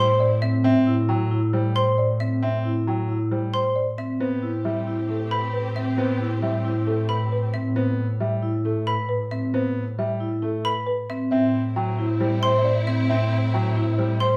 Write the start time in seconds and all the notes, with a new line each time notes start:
Already playing: A2 C4 E4 C6
0.00 C5
0.20 D5
0.42 C4 E5
0.64 C4 E5
0.87 E4
1.09 F#3 G5
1.31 E4
1.53 G3 C5
1.75 C5 C6
1.98 D5
2.20 C4 E5
2.43 C4 E5
2.65 E4
2.87 F#3 G5
3.09 E4
3.31 G3 C5
3.53 C5 C6
3.76 D5
3.98 C4 E5
4.20 A2 B3 C4 G4 C5
4.43 E4
4.65 G3 E5
4.87 E4
5.09 A3 A4
5.31 B4 B5
5.53 B4
5.76 C4 E5
5.98 B3 C5
6.21 E4
6.42 G3 E5
6.65 E4
6.87 A3 A4
7.09 B4 B5
7.32 B4
7.54 C4 E5
7.76 B3 C5
8.20 G3 E5
8.42 E4
8.65 A3 A4
8.87 B4 B5
9.09 B4
9.31 C4 E5
9.54 B3 C5
9.98 G3 E5
10.20 E4
10.42 A3 A4
10.65 B4 B5
10.87 B4
11.10 C4 E5
11.31 A2 C4 E4 E5
11.76 F#3 G5
11.98 E4
12.20 G3 C5
12.43 C5 C6
12.65 D5
12.87 C4 E5
13.09 C4 E5
13.54 F#3 G5
13.76 E4
13.98 G3 C5
14.20 C5 C6